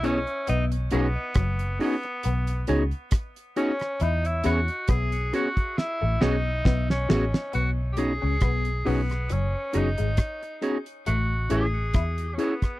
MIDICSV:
0, 0, Header, 1, 8, 480
1, 0, Start_track
1, 0, Tempo, 882353
1, 260, Time_signature, 4, 2, 24, 8
1, 6962, End_track
2, 0, Start_track
2, 0, Title_t, "Clean electric guitar"
2, 0, Program_c, 0, 27
2, 18, Note_on_c, 0, 59, 90
2, 20, Note_on_c, 0, 64, 88
2, 23, Note_on_c, 0, 68, 101
2, 25, Note_on_c, 0, 73, 93
2, 97, Note_off_c, 0, 59, 0
2, 98, Note_off_c, 0, 64, 0
2, 100, Note_off_c, 0, 68, 0
2, 100, Note_off_c, 0, 73, 0
2, 498, Note_on_c, 0, 59, 82
2, 501, Note_on_c, 0, 63, 96
2, 503, Note_on_c, 0, 68, 98
2, 506, Note_on_c, 0, 73, 92
2, 577, Note_off_c, 0, 59, 0
2, 579, Note_off_c, 0, 63, 0
2, 579, Note_off_c, 0, 68, 0
2, 581, Note_off_c, 0, 73, 0
2, 979, Note_on_c, 0, 59, 89
2, 983, Note_on_c, 0, 63, 87
2, 985, Note_on_c, 0, 68, 99
2, 987, Note_on_c, 0, 73, 93
2, 1057, Note_off_c, 0, 59, 0
2, 1059, Note_off_c, 0, 63, 0
2, 1060, Note_off_c, 0, 68, 0
2, 1061, Note_off_c, 0, 73, 0
2, 1459, Note_on_c, 0, 59, 84
2, 1462, Note_on_c, 0, 63, 84
2, 1463, Note_on_c, 0, 68, 85
2, 1467, Note_on_c, 0, 73, 89
2, 1537, Note_off_c, 0, 59, 0
2, 1538, Note_off_c, 0, 63, 0
2, 1539, Note_off_c, 0, 68, 0
2, 1541, Note_off_c, 0, 73, 0
2, 1938, Note_on_c, 0, 59, 79
2, 1942, Note_on_c, 0, 63, 85
2, 1944, Note_on_c, 0, 68, 89
2, 1945, Note_on_c, 0, 73, 97
2, 2016, Note_off_c, 0, 59, 0
2, 2018, Note_off_c, 0, 63, 0
2, 2019, Note_off_c, 0, 68, 0
2, 2020, Note_off_c, 0, 73, 0
2, 2418, Note_on_c, 0, 59, 76
2, 2421, Note_on_c, 0, 66, 89
2, 2423, Note_on_c, 0, 68, 90
2, 2425, Note_on_c, 0, 73, 101
2, 2496, Note_off_c, 0, 59, 0
2, 2497, Note_off_c, 0, 66, 0
2, 2499, Note_off_c, 0, 68, 0
2, 2500, Note_off_c, 0, 73, 0
2, 2900, Note_on_c, 0, 59, 85
2, 2903, Note_on_c, 0, 66, 87
2, 2905, Note_on_c, 0, 68, 85
2, 2908, Note_on_c, 0, 73, 92
2, 2977, Note_off_c, 0, 59, 0
2, 2978, Note_off_c, 0, 66, 0
2, 2979, Note_off_c, 0, 68, 0
2, 2981, Note_off_c, 0, 73, 0
2, 3377, Note_on_c, 0, 59, 89
2, 3379, Note_on_c, 0, 66, 100
2, 3381, Note_on_c, 0, 68, 95
2, 3383, Note_on_c, 0, 73, 102
2, 3455, Note_off_c, 0, 59, 0
2, 3456, Note_off_c, 0, 66, 0
2, 3457, Note_off_c, 0, 68, 0
2, 3458, Note_off_c, 0, 73, 0
2, 3858, Note_on_c, 0, 59, 87
2, 3860, Note_on_c, 0, 66, 90
2, 3862, Note_on_c, 0, 68, 106
2, 3865, Note_on_c, 0, 73, 106
2, 3936, Note_off_c, 0, 59, 0
2, 3937, Note_off_c, 0, 66, 0
2, 3937, Note_off_c, 0, 68, 0
2, 3939, Note_off_c, 0, 73, 0
2, 4338, Note_on_c, 0, 59, 78
2, 4340, Note_on_c, 0, 63, 73
2, 4343, Note_on_c, 0, 68, 84
2, 4345, Note_on_c, 0, 73, 78
2, 4415, Note_off_c, 0, 59, 0
2, 4417, Note_off_c, 0, 63, 0
2, 4418, Note_off_c, 0, 68, 0
2, 4419, Note_off_c, 0, 73, 0
2, 4817, Note_on_c, 0, 59, 83
2, 4820, Note_on_c, 0, 63, 92
2, 4822, Note_on_c, 0, 68, 88
2, 4824, Note_on_c, 0, 73, 89
2, 4895, Note_off_c, 0, 59, 0
2, 4896, Note_off_c, 0, 63, 0
2, 4897, Note_off_c, 0, 68, 0
2, 4899, Note_off_c, 0, 73, 0
2, 5297, Note_on_c, 0, 59, 69
2, 5301, Note_on_c, 0, 63, 72
2, 5303, Note_on_c, 0, 68, 77
2, 5305, Note_on_c, 0, 73, 90
2, 5375, Note_off_c, 0, 59, 0
2, 5377, Note_off_c, 0, 63, 0
2, 5378, Note_off_c, 0, 68, 0
2, 5379, Note_off_c, 0, 73, 0
2, 5779, Note_on_c, 0, 59, 81
2, 5782, Note_on_c, 0, 63, 86
2, 5783, Note_on_c, 0, 68, 91
2, 5785, Note_on_c, 0, 73, 85
2, 5856, Note_off_c, 0, 59, 0
2, 5857, Note_off_c, 0, 63, 0
2, 5858, Note_off_c, 0, 68, 0
2, 5859, Note_off_c, 0, 73, 0
2, 6258, Note_on_c, 0, 59, 82
2, 6261, Note_on_c, 0, 64, 74
2, 6263, Note_on_c, 0, 68, 90
2, 6265, Note_on_c, 0, 73, 90
2, 6335, Note_off_c, 0, 59, 0
2, 6337, Note_off_c, 0, 64, 0
2, 6338, Note_off_c, 0, 68, 0
2, 6339, Note_off_c, 0, 73, 0
2, 6738, Note_on_c, 0, 59, 70
2, 6741, Note_on_c, 0, 64, 78
2, 6743, Note_on_c, 0, 68, 75
2, 6745, Note_on_c, 0, 73, 85
2, 6815, Note_off_c, 0, 59, 0
2, 6817, Note_off_c, 0, 64, 0
2, 6818, Note_off_c, 0, 68, 0
2, 6819, Note_off_c, 0, 73, 0
2, 6962, End_track
3, 0, Start_track
3, 0, Title_t, "Tine electric piano"
3, 0, Program_c, 1, 4
3, 18, Note_on_c, 1, 59, 91
3, 19, Note_on_c, 1, 61, 83
3, 21, Note_on_c, 1, 64, 83
3, 22, Note_on_c, 1, 68, 102
3, 97, Note_off_c, 1, 59, 0
3, 97, Note_off_c, 1, 61, 0
3, 98, Note_off_c, 1, 64, 0
3, 99, Note_off_c, 1, 68, 0
3, 498, Note_on_c, 1, 61, 89
3, 502, Note_on_c, 1, 63, 85
3, 502, Note_on_c, 1, 66, 82
3, 503, Note_on_c, 1, 68, 103
3, 576, Note_off_c, 1, 61, 0
3, 578, Note_off_c, 1, 63, 0
3, 578, Note_off_c, 1, 66, 0
3, 579, Note_off_c, 1, 68, 0
3, 976, Note_on_c, 1, 61, 91
3, 978, Note_on_c, 1, 68, 92
3, 979, Note_on_c, 1, 63, 84
3, 979, Note_on_c, 1, 66, 84
3, 1055, Note_off_c, 1, 61, 0
3, 1056, Note_off_c, 1, 68, 0
3, 1057, Note_off_c, 1, 63, 0
3, 1057, Note_off_c, 1, 66, 0
3, 1456, Note_on_c, 1, 61, 95
3, 1459, Note_on_c, 1, 63, 90
3, 1459, Note_on_c, 1, 66, 87
3, 1460, Note_on_c, 1, 68, 112
3, 1535, Note_off_c, 1, 61, 0
3, 1536, Note_off_c, 1, 66, 0
3, 1537, Note_off_c, 1, 63, 0
3, 1537, Note_off_c, 1, 68, 0
3, 1940, Note_on_c, 1, 61, 97
3, 1941, Note_on_c, 1, 63, 86
3, 1941, Note_on_c, 1, 66, 84
3, 1942, Note_on_c, 1, 68, 99
3, 2017, Note_off_c, 1, 61, 0
3, 2017, Note_off_c, 1, 63, 0
3, 2017, Note_off_c, 1, 66, 0
3, 2017, Note_off_c, 1, 68, 0
3, 2414, Note_on_c, 1, 59, 91
3, 2417, Note_on_c, 1, 61, 88
3, 2418, Note_on_c, 1, 66, 83
3, 2418, Note_on_c, 1, 68, 106
3, 2494, Note_off_c, 1, 59, 0
3, 2495, Note_off_c, 1, 61, 0
3, 2495, Note_off_c, 1, 68, 0
3, 2496, Note_off_c, 1, 66, 0
3, 2899, Note_on_c, 1, 59, 91
3, 2901, Note_on_c, 1, 61, 81
3, 2902, Note_on_c, 1, 66, 84
3, 2902, Note_on_c, 1, 68, 99
3, 2976, Note_off_c, 1, 59, 0
3, 2977, Note_off_c, 1, 61, 0
3, 2977, Note_off_c, 1, 66, 0
3, 2977, Note_off_c, 1, 68, 0
3, 3380, Note_on_c, 1, 59, 89
3, 3383, Note_on_c, 1, 61, 87
3, 3383, Note_on_c, 1, 66, 84
3, 3384, Note_on_c, 1, 68, 104
3, 3456, Note_off_c, 1, 59, 0
3, 3458, Note_off_c, 1, 61, 0
3, 3458, Note_off_c, 1, 66, 0
3, 3458, Note_off_c, 1, 68, 0
3, 3856, Note_on_c, 1, 61, 84
3, 3857, Note_on_c, 1, 59, 92
3, 3857, Note_on_c, 1, 66, 87
3, 3859, Note_on_c, 1, 68, 105
3, 3934, Note_off_c, 1, 59, 0
3, 3934, Note_off_c, 1, 61, 0
3, 3935, Note_off_c, 1, 66, 0
3, 3935, Note_off_c, 1, 68, 0
3, 4338, Note_on_c, 1, 61, 88
3, 4338, Note_on_c, 1, 63, 78
3, 4339, Note_on_c, 1, 68, 88
3, 4340, Note_on_c, 1, 66, 81
3, 4415, Note_off_c, 1, 61, 0
3, 4415, Note_off_c, 1, 63, 0
3, 4415, Note_off_c, 1, 68, 0
3, 4416, Note_off_c, 1, 66, 0
3, 4815, Note_on_c, 1, 61, 85
3, 4815, Note_on_c, 1, 63, 78
3, 4816, Note_on_c, 1, 66, 72
3, 4817, Note_on_c, 1, 68, 93
3, 4893, Note_off_c, 1, 63, 0
3, 4894, Note_off_c, 1, 61, 0
3, 4894, Note_off_c, 1, 66, 0
3, 4895, Note_off_c, 1, 68, 0
3, 5294, Note_on_c, 1, 61, 86
3, 5296, Note_on_c, 1, 63, 77
3, 5298, Note_on_c, 1, 66, 80
3, 5300, Note_on_c, 1, 68, 98
3, 5373, Note_off_c, 1, 61, 0
3, 5374, Note_off_c, 1, 63, 0
3, 5375, Note_off_c, 1, 66, 0
3, 5376, Note_off_c, 1, 68, 0
3, 5776, Note_on_c, 1, 61, 88
3, 5776, Note_on_c, 1, 63, 79
3, 5779, Note_on_c, 1, 66, 82
3, 5780, Note_on_c, 1, 68, 96
3, 5854, Note_off_c, 1, 61, 0
3, 5854, Note_off_c, 1, 63, 0
3, 5855, Note_off_c, 1, 66, 0
3, 5856, Note_off_c, 1, 68, 0
3, 6254, Note_on_c, 1, 59, 87
3, 6255, Note_on_c, 1, 61, 83
3, 6257, Note_on_c, 1, 64, 83
3, 6258, Note_on_c, 1, 68, 91
3, 6333, Note_off_c, 1, 59, 0
3, 6334, Note_off_c, 1, 61, 0
3, 6335, Note_off_c, 1, 64, 0
3, 6335, Note_off_c, 1, 68, 0
3, 6733, Note_on_c, 1, 59, 83
3, 6734, Note_on_c, 1, 61, 76
3, 6736, Note_on_c, 1, 64, 80
3, 6736, Note_on_c, 1, 68, 93
3, 6813, Note_off_c, 1, 59, 0
3, 6813, Note_off_c, 1, 61, 0
3, 6814, Note_off_c, 1, 64, 0
3, 6814, Note_off_c, 1, 68, 0
3, 6962, End_track
4, 0, Start_track
4, 0, Title_t, "Tenor saxophone"
4, 0, Program_c, 2, 66
4, 27, Note_on_c, 2, 61, 103
4, 264, Note_off_c, 2, 61, 0
4, 268, Note_on_c, 2, 63, 105
4, 355, Note_off_c, 2, 63, 0
4, 507, Note_on_c, 2, 59, 96
4, 961, Note_off_c, 2, 59, 0
4, 985, Note_on_c, 2, 59, 85
4, 1440, Note_off_c, 2, 59, 0
4, 1947, Note_on_c, 2, 61, 96
4, 2191, Note_on_c, 2, 63, 94
4, 2199, Note_off_c, 2, 61, 0
4, 2321, Note_on_c, 2, 64, 104
4, 2329, Note_off_c, 2, 63, 0
4, 2424, Note_off_c, 2, 64, 0
4, 2428, Note_on_c, 2, 66, 98
4, 2664, Note_on_c, 2, 68, 111
4, 2672, Note_off_c, 2, 66, 0
4, 2901, Note_off_c, 2, 68, 0
4, 2909, Note_on_c, 2, 66, 108
4, 3142, Note_on_c, 2, 64, 95
4, 3150, Note_off_c, 2, 66, 0
4, 3387, Note_on_c, 2, 63, 104
4, 3395, Note_off_c, 2, 64, 0
4, 3753, Note_off_c, 2, 63, 0
4, 3757, Note_on_c, 2, 61, 81
4, 4080, Note_off_c, 2, 61, 0
4, 4104, Note_on_c, 2, 66, 100
4, 4191, Note_off_c, 2, 66, 0
4, 4312, Note_on_c, 2, 67, 79
4, 4342, Note_on_c, 2, 68, 110
4, 4351, Note_off_c, 2, 67, 0
4, 4829, Note_on_c, 2, 59, 88
4, 4837, Note_off_c, 2, 68, 0
4, 5071, Note_on_c, 2, 61, 89
4, 5079, Note_off_c, 2, 59, 0
4, 5315, Note_on_c, 2, 63, 84
4, 5323, Note_off_c, 2, 61, 0
4, 5786, Note_off_c, 2, 63, 0
4, 6024, Note_on_c, 2, 66, 110
4, 6262, Note_on_c, 2, 68, 104
4, 6271, Note_off_c, 2, 66, 0
4, 6713, Note_on_c, 2, 61, 61
4, 6721, Note_off_c, 2, 68, 0
4, 6747, Note_on_c, 2, 59, 85
4, 6755, Note_off_c, 2, 61, 0
4, 6962, Note_off_c, 2, 59, 0
4, 6962, End_track
5, 0, Start_track
5, 0, Title_t, "Clean electric guitar"
5, 0, Program_c, 3, 27
5, 262, Note_on_c, 3, 59, 89
5, 405, Note_off_c, 3, 59, 0
5, 502, Note_on_c, 3, 59, 91
5, 580, Note_off_c, 3, 59, 0
5, 743, Note_on_c, 3, 54, 83
5, 886, Note_off_c, 3, 54, 0
5, 1224, Note_on_c, 3, 59, 78
5, 1366, Note_off_c, 3, 59, 0
5, 1465, Note_on_c, 3, 61, 78
5, 1542, Note_off_c, 3, 61, 0
5, 2183, Note_on_c, 3, 64, 83
5, 2325, Note_off_c, 3, 64, 0
5, 2422, Note_on_c, 3, 64, 97
5, 2500, Note_off_c, 3, 64, 0
5, 2660, Note_on_c, 3, 59, 82
5, 2803, Note_off_c, 3, 59, 0
5, 3273, Note_on_c, 3, 57, 73
5, 3337, Note_off_c, 3, 57, 0
5, 3379, Note_on_c, 3, 59, 72
5, 3522, Note_off_c, 3, 59, 0
5, 3618, Note_on_c, 3, 59, 82
5, 3762, Note_off_c, 3, 59, 0
5, 3860, Note_on_c, 3, 57, 85
5, 3938, Note_off_c, 3, 57, 0
5, 4099, Note_on_c, 3, 59, 80
5, 4242, Note_off_c, 3, 59, 0
5, 4472, Note_on_c, 3, 61, 65
5, 4536, Note_off_c, 3, 61, 0
5, 4582, Note_on_c, 3, 59, 82
5, 4725, Note_off_c, 3, 59, 0
5, 4822, Note_on_c, 3, 59, 72
5, 4965, Note_off_c, 3, 59, 0
5, 5060, Note_on_c, 3, 54, 70
5, 5138, Note_off_c, 3, 54, 0
5, 5300, Note_on_c, 3, 54, 78
5, 5378, Note_off_c, 3, 54, 0
5, 5430, Note_on_c, 3, 56, 72
5, 5495, Note_off_c, 3, 56, 0
5, 6020, Note_on_c, 3, 57, 88
5, 6163, Note_off_c, 3, 57, 0
5, 6261, Note_on_c, 3, 57, 71
5, 6404, Note_off_c, 3, 57, 0
5, 6500, Note_on_c, 3, 64, 70
5, 6643, Note_off_c, 3, 64, 0
5, 6962, End_track
6, 0, Start_track
6, 0, Title_t, "Fingered electric bass"
6, 0, Program_c, 4, 33
6, 0, Note_on_c, 4, 35, 88
6, 132, Note_off_c, 4, 35, 0
6, 268, Note_on_c, 4, 35, 108
6, 490, Note_off_c, 4, 35, 0
6, 507, Note_on_c, 4, 35, 101
6, 627, Note_off_c, 4, 35, 0
6, 742, Note_on_c, 4, 30, 100
6, 966, Note_off_c, 4, 30, 0
6, 1227, Note_on_c, 4, 35, 88
6, 1449, Note_off_c, 4, 35, 0
6, 1465, Note_on_c, 4, 37, 89
6, 1586, Note_off_c, 4, 37, 0
6, 2183, Note_on_c, 4, 40, 104
6, 2406, Note_off_c, 4, 40, 0
6, 2425, Note_on_c, 4, 40, 109
6, 2545, Note_off_c, 4, 40, 0
6, 2662, Note_on_c, 4, 35, 96
6, 2886, Note_off_c, 4, 35, 0
6, 3278, Note_on_c, 4, 33, 87
6, 3376, Note_off_c, 4, 33, 0
6, 3384, Note_on_c, 4, 35, 84
6, 3607, Note_off_c, 4, 35, 0
6, 3624, Note_on_c, 4, 35, 103
6, 3846, Note_off_c, 4, 35, 0
6, 3866, Note_on_c, 4, 33, 99
6, 3985, Note_off_c, 4, 33, 0
6, 4107, Note_on_c, 4, 35, 95
6, 4452, Note_off_c, 4, 35, 0
6, 4479, Note_on_c, 4, 37, 90
6, 4576, Note_off_c, 4, 37, 0
6, 4583, Note_on_c, 4, 35, 91
6, 4806, Note_off_c, 4, 35, 0
6, 4826, Note_on_c, 4, 35, 85
6, 5047, Note_off_c, 4, 35, 0
6, 5069, Note_on_c, 4, 30, 89
6, 5187, Note_off_c, 4, 30, 0
6, 5306, Note_on_c, 4, 30, 94
6, 5425, Note_off_c, 4, 30, 0
6, 5439, Note_on_c, 4, 32, 86
6, 5536, Note_off_c, 4, 32, 0
6, 6027, Note_on_c, 4, 33, 108
6, 6248, Note_off_c, 4, 33, 0
6, 6263, Note_on_c, 4, 33, 91
6, 6486, Note_off_c, 4, 33, 0
6, 6504, Note_on_c, 4, 40, 89
6, 6726, Note_off_c, 4, 40, 0
6, 6962, End_track
7, 0, Start_track
7, 0, Title_t, "Muted clean electric guitar strokes"
7, 1112, Note_on_c, 9, 29, 46
7, 1166, Note_off_c, 9, 29, 0
7, 3031, Note_on_c, 9, 29, 47
7, 3086, Note_off_c, 9, 29, 0
7, 5671, Note_on_c, 9, 29, 36
7, 5725, Note_off_c, 9, 29, 0
7, 6962, End_track
8, 0, Start_track
8, 0, Title_t, "Drums"
8, 21, Note_on_c, 9, 42, 76
8, 76, Note_off_c, 9, 42, 0
8, 148, Note_on_c, 9, 42, 35
8, 202, Note_off_c, 9, 42, 0
8, 257, Note_on_c, 9, 42, 79
8, 312, Note_off_c, 9, 42, 0
8, 390, Note_on_c, 9, 42, 50
8, 444, Note_off_c, 9, 42, 0
8, 493, Note_on_c, 9, 42, 84
8, 547, Note_off_c, 9, 42, 0
8, 731, Note_on_c, 9, 42, 74
8, 738, Note_on_c, 9, 36, 104
8, 738, Note_on_c, 9, 37, 108
8, 786, Note_off_c, 9, 42, 0
8, 792, Note_off_c, 9, 36, 0
8, 792, Note_off_c, 9, 37, 0
8, 866, Note_on_c, 9, 42, 60
8, 920, Note_off_c, 9, 42, 0
8, 981, Note_on_c, 9, 46, 56
8, 1036, Note_off_c, 9, 46, 0
8, 1106, Note_on_c, 9, 42, 38
8, 1160, Note_off_c, 9, 42, 0
8, 1214, Note_on_c, 9, 42, 81
8, 1269, Note_off_c, 9, 42, 0
8, 1345, Note_on_c, 9, 42, 61
8, 1399, Note_off_c, 9, 42, 0
8, 1454, Note_on_c, 9, 42, 71
8, 1508, Note_off_c, 9, 42, 0
8, 1585, Note_on_c, 9, 42, 33
8, 1639, Note_off_c, 9, 42, 0
8, 1692, Note_on_c, 9, 42, 91
8, 1697, Note_on_c, 9, 36, 99
8, 1698, Note_on_c, 9, 37, 109
8, 1746, Note_off_c, 9, 42, 0
8, 1752, Note_off_c, 9, 36, 0
8, 1753, Note_off_c, 9, 37, 0
8, 1830, Note_on_c, 9, 42, 52
8, 1884, Note_off_c, 9, 42, 0
8, 1939, Note_on_c, 9, 42, 80
8, 1994, Note_off_c, 9, 42, 0
8, 2065, Note_on_c, 9, 42, 38
8, 2074, Note_on_c, 9, 37, 66
8, 2119, Note_off_c, 9, 42, 0
8, 2129, Note_off_c, 9, 37, 0
8, 2175, Note_on_c, 9, 42, 77
8, 2229, Note_off_c, 9, 42, 0
8, 2310, Note_on_c, 9, 42, 52
8, 2365, Note_off_c, 9, 42, 0
8, 2413, Note_on_c, 9, 42, 84
8, 2468, Note_off_c, 9, 42, 0
8, 2546, Note_on_c, 9, 42, 39
8, 2600, Note_off_c, 9, 42, 0
8, 2652, Note_on_c, 9, 42, 81
8, 2658, Note_on_c, 9, 36, 110
8, 2659, Note_on_c, 9, 37, 109
8, 2707, Note_off_c, 9, 42, 0
8, 2713, Note_off_c, 9, 36, 0
8, 2713, Note_off_c, 9, 37, 0
8, 2787, Note_on_c, 9, 42, 65
8, 2841, Note_off_c, 9, 42, 0
8, 2902, Note_on_c, 9, 42, 83
8, 2957, Note_off_c, 9, 42, 0
8, 3029, Note_on_c, 9, 36, 68
8, 3030, Note_on_c, 9, 42, 34
8, 3084, Note_off_c, 9, 36, 0
8, 3085, Note_off_c, 9, 42, 0
8, 3145, Note_on_c, 9, 38, 61
8, 3199, Note_off_c, 9, 38, 0
8, 3381, Note_on_c, 9, 38, 77
8, 3436, Note_off_c, 9, 38, 0
8, 3619, Note_on_c, 9, 36, 96
8, 3624, Note_on_c, 9, 38, 89
8, 3673, Note_off_c, 9, 36, 0
8, 3678, Note_off_c, 9, 38, 0
8, 3754, Note_on_c, 9, 38, 81
8, 3809, Note_off_c, 9, 38, 0
8, 3862, Note_on_c, 9, 38, 107
8, 3916, Note_off_c, 9, 38, 0
8, 3994, Note_on_c, 9, 38, 95
8, 4049, Note_off_c, 9, 38, 0
8, 4098, Note_on_c, 9, 42, 74
8, 4152, Note_off_c, 9, 42, 0
8, 4334, Note_on_c, 9, 42, 83
8, 4389, Note_off_c, 9, 42, 0
8, 4573, Note_on_c, 9, 42, 75
8, 4578, Note_on_c, 9, 36, 102
8, 4579, Note_on_c, 9, 37, 100
8, 4627, Note_off_c, 9, 42, 0
8, 4633, Note_off_c, 9, 36, 0
8, 4633, Note_off_c, 9, 37, 0
8, 4705, Note_on_c, 9, 42, 60
8, 4759, Note_off_c, 9, 42, 0
8, 4821, Note_on_c, 9, 46, 59
8, 4876, Note_off_c, 9, 46, 0
8, 4948, Note_on_c, 9, 42, 49
8, 4957, Note_on_c, 9, 37, 62
8, 5003, Note_off_c, 9, 42, 0
8, 5011, Note_off_c, 9, 37, 0
8, 5056, Note_on_c, 9, 42, 81
8, 5110, Note_off_c, 9, 42, 0
8, 5296, Note_on_c, 9, 42, 68
8, 5350, Note_off_c, 9, 42, 0
8, 5427, Note_on_c, 9, 42, 54
8, 5482, Note_off_c, 9, 42, 0
8, 5533, Note_on_c, 9, 42, 90
8, 5538, Note_on_c, 9, 36, 100
8, 5540, Note_on_c, 9, 37, 105
8, 5588, Note_off_c, 9, 42, 0
8, 5592, Note_off_c, 9, 36, 0
8, 5594, Note_off_c, 9, 37, 0
8, 5672, Note_on_c, 9, 42, 43
8, 5727, Note_off_c, 9, 42, 0
8, 5779, Note_on_c, 9, 42, 71
8, 5833, Note_off_c, 9, 42, 0
8, 5909, Note_on_c, 9, 42, 52
8, 5963, Note_off_c, 9, 42, 0
8, 6018, Note_on_c, 9, 42, 75
8, 6073, Note_off_c, 9, 42, 0
8, 6256, Note_on_c, 9, 42, 81
8, 6311, Note_off_c, 9, 42, 0
8, 6493, Note_on_c, 9, 42, 74
8, 6498, Note_on_c, 9, 36, 104
8, 6500, Note_on_c, 9, 37, 104
8, 6548, Note_off_c, 9, 42, 0
8, 6552, Note_off_c, 9, 36, 0
8, 6554, Note_off_c, 9, 37, 0
8, 6626, Note_on_c, 9, 42, 61
8, 6680, Note_off_c, 9, 42, 0
8, 6739, Note_on_c, 9, 42, 83
8, 6793, Note_off_c, 9, 42, 0
8, 6866, Note_on_c, 9, 42, 49
8, 6867, Note_on_c, 9, 36, 64
8, 6874, Note_on_c, 9, 37, 65
8, 6920, Note_off_c, 9, 42, 0
8, 6921, Note_off_c, 9, 36, 0
8, 6929, Note_off_c, 9, 37, 0
8, 6962, End_track
0, 0, End_of_file